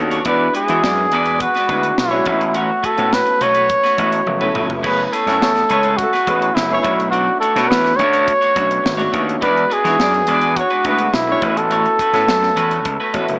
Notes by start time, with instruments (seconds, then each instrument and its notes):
Already playing: slap bass D#2, grand piano B3 C#4 D4 F#4 A4
0.11 clean electric guitar A3 D4 F#4 C#5, closed hi-hat
0.25 slap bass E2, grand piano G#3 B3 D4 E4 F#4, clean electric guitar G#3 D4 F#4 B4, horn section D4 D5, flugelhorn B4, kick, closed hi-hat
0.54 clean electric guitar G#3 D4 F#4 B4, flugelhorn G#4, closed hi-hat
0.68 slap bass E3, grand piano G#3 B3 D4 E4 F#4, clean electric guitar G#3 D4 F#4 C#5, horn section E4 E5, closed hi-hat
0.83 slap bass F#2, horn section D4 D5, muted clean electric guitar stroke, snare
0.98 muted clean electric guitar stroke
1.11 slap bass E2, clean electric guitar G#3 D4 F#4 B4, horn section D4 D5, closed hi-hat
1.26 clean electric guitar G#3 D4 F#4 B4, closed hi-hat
1.39 horn section B3 B4, flugelhorn F#4, muted clean electric guitar stroke, kick, closed hi-hat
1.55 clean electric guitar G#3 D4 F#4 B4, snare, closed hi-hat
1.67 slap bass D2, grand piano G#3 B3 D4 E4 F#4, clean electric guitar G#3 D4 F#4, horn section B3 B4, kick, closed hi-hat
1.71 clean electric guitar B4
1.83 muted clean electric guitar stroke, closed hi-hat
1.98 slap bass B1, flugelhorn E4, muted clean electric guitar stroke, snare
2.10 grand piano G#3 B3 D4 E4 F#4, horn section C#4 C#5, muted clean electric guitar stroke
2.25 slap bass A1, grand piano A3 B3 C#4 E4 F#4, clean electric guitar A3 C#4 F#4 B4, flugelhorn E4, kick, closed hi-hat
2.40 muted clean electric guitar stroke, closed hi-hat
2.54 clean electric guitar A3 C#4 F#4 C#5, flugelhorn F#4, closed hi-hat
2.83 clean electric guitar A3 C#4 F#4 B4, flugelhorn A4, kick, closed hi-hat
2.97 slap bass A2, grand piano A3 B3 C#4 E4 F#4, clean electric guitar A3 C#4 F#4 B4, closed hi-hat
3.12 flugelhorn B4, muted clean electric guitar stroke, snare
3.26 muted clean electric guitar stroke, closed hi-hat
3.41 slap bass B1, clean electric guitar A3 C#4 F#4 B4, flugelhorn C#5, closed hi-hat
3.54 clean electric guitar A3 C#4 F#4 B4, closed hi-hat
3.69 muted clean electric guitar stroke, kick, closed hi-hat
3.83 clean electric guitar A3 C#4 F#4 B4, snare, closed hi-hat
3.97 slap bass A1, grand piano A3 B3 C#4 E4 F#4, clean electric guitar A3 C#4 F#4 B4, kick, closed hi-hat
4.12 muted clean electric guitar stroke, closed hi-hat
4.26 slap bass F#1, muted clean electric guitar stroke, high tom
4.40 grand piano A3 B3 C#4 E4 A4, clean electric guitar A3 C#4 F#4 B4, mid tom
4.54 slap bass F1, clean electric guitar A3 C#4 F#4 B4, mid tom
4.69 muted clean electric guitar stroke, floor tom
4.82 slap bass F#1, clean electric guitar A3 E4 G#4 B4, grand piano A3 B3 C#4 E4 G#4, horn section C#4 C#5, flugelhorn B4, kick, crash
5.06 flugelhorn B4
5.12 clean electric guitar A3 E4 G#4 B4, flugelhorn A4, closed hi-hat
5.26 slap bass F#2, grand piano A3 B3 C#4 E4 G#5, clean electric guitar A3 E4 G#4 C#5, horn section E4 E5, snare, closed hi-hat
5.41 slap bass E2, horn section C#4 C#5, muted clean electric guitar stroke, snare
5.55 muted clean electric guitar stroke, snare, closed hi-hat
5.69 slap bass C#2, clean electric guitar A3 E4 G#4 B4, horn section C#4 C#5, closed hi-hat
5.83 clean electric guitar A3 E4 G#4 B4, closed hi-hat
5.97 horn section A3 A4, flugelhorn F#4, muted clean electric guitar stroke, kick, closed hi-hat
6.13 clean electric guitar A3 E4 G#4 B4, snare, closed hi-hat
6.26 slap bass A1, clean electric guitar A3 E4 G#4 B4, grand piano A3 B3 C#4 E4 G#4, horn section B3 B4, kick, closed hi-hat
6.41 muted clean electric guitar stroke, closed hi-hat
6.55 slap bass F#1, flugelhorn E4, muted clean electric guitar stroke, snare
6.69 grand piano A3 B3 C#4 E4 G#4, horn section C#4 C#5, muted clean electric guitar stroke
6.81 slap bass B1, clean electric guitar A3 D4 F#4 C#5, grand piano A3 B3 C#4 D4 F#4, flugelhorn E4, kick, closed hi-hat
6.97 muted clean electric guitar stroke, closed hi-hat
7.11 clean electric guitar A3 D4 F#4 D5, flugelhorn F#4, closed hi-hat
7.40 clean electric guitar A3 D4 F#4 C#5, flugelhorn A4, closed hi-hat
7.55 slap bass B2, grand piano A3 B3 C#4 D4 F#4, clean electric guitar A3 D4 F#4 C#5, snare, closed hi-hat
7.68 slap bass E2, flugelhorn B4, muted clean electric guitar stroke, snare
7.84 muted clean electric guitar stroke, snare, closed hi-hat
7.96 slap bass D2, clean electric guitar A3 D4 F#4 C#5, flugelhorn C#5, closed hi-hat
8.13 clean electric guitar A3 D4 F#4 C#5, closed hi-hat
8.27 muted clean electric guitar stroke, kick, closed hi-hat
8.41 clean electric guitar A3 D4 F#4 C#5, closed hi-hat
8.55 slap bass B1, clean electric guitar A3 D4 F#4 C#5, grand piano A3 B3 C#4 D4 F#4, kick, closed hi-hat
8.69 muted clean electric guitar stroke, closed hi-hat
8.83 slap bass G#1, muted clean electric guitar stroke, snare
8.97 grand piano A3 B3 C#4 D4 F#4, clean electric guitar A3 D4 F#4 C#5, closed hi-hat
9.12 slap bass D#2, clean electric guitar A3 D4 F#4 C#5, kick, closed hi-hat
9.27 muted clean electric guitar stroke, closed hi-hat
9.41 slap bass E2, clean electric guitar G#3 D4 F#4 B4, grand piano G#3 B3 D4 E4 F#4, horn section D4 D5, flugelhorn B4, kick, closed hi-hat
9.57 closed hi-hat
9.70 clean electric guitar G#3 D4 F#4 B4, flugelhorn G#4, closed hi-hat
9.84 slap bass E3, grand piano G#3 B3 D4 E4 F#4, clean electric guitar G#3 D4 F#4 C#5, horn section E4 E5, snare, closed hi-hat
9.99 slap bass F#2, horn section D4 D5, muted clean electric guitar stroke, snare
10.13 muted clean electric guitar stroke, closed hi-hat
10.27 slap bass E2, clean electric guitar G#3 D4 F#4 B4, horn section D4 D5, closed hi-hat
10.41 clean electric guitar G#3 D4 F#4 B4, closed hi-hat
10.56 horn section C#4 C#5, flugelhorn F#4, muted clean electric guitar stroke, kick, closed hi-hat
10.70 clean electric guitar G#3 D4 F#4 B4, closed hi-hat
10.84 slap bass D2, clean electric guitar G#3 D4 F#4 B4, grand piano G#3 B3 D4 E4 F#4, horn section B3 B4, kick, closed hi-hat
10.98 muted clean electric guitar stroke, closed hi-hat
11.13 slap bass B1, flugelhorn E4, muted clean electric guitar stroke, snare
11.27 grand piano G#3 B3 D4 E4 F#4, horn section C#4 C#5, muted clean electric guitar stroke
11.42 slap bass A1, grand piano A3 B3 C#4 E4 F#4, clean electric guitar A3 C#4 F#4 B4, kick, closed hi-hat
11.57 flugelhorn A4, muted clean electric guitar stroke, closed hi-hat
11.71 clean electric guitar A3 C#4 F#4 C#5, closed hi-hat
11.86 closed hi-hat
11.99 clean electric guitar A3 C#4 F#4 B4, kick, closed hi-hat
12.13 slap bass A2, grand piano A3 B3 C#4 E4 A4, clean electric guitar A3 C#4 F#4 B4, snare, closed hi-hat
12.27 slap bass F#2, muted clean electric guitar stroke, snare
12.43 muted clean electric guitar stroke, snare
12.56 slap bass E2, clean electric guitar A3 C#4 F#4 B4, closed hi-hat
12.71 clean electric guitar A3 C#4 F#4 B4, closed hi-hat
12.85 slap bass C#2, muted clean electric guitar stroke, kick, closed hi-hat
13.00 clean electric guitar A3 C#4 F#4 B4
13.13 slap bass A1, grand piano A3 B3 C#4 E4 F#4, clean electric guitar A3 C#4 F#4 B4, kick, closed hi-hat
13.28 slap bass F#1, muted clean electric guitar stroke, closed hi-hat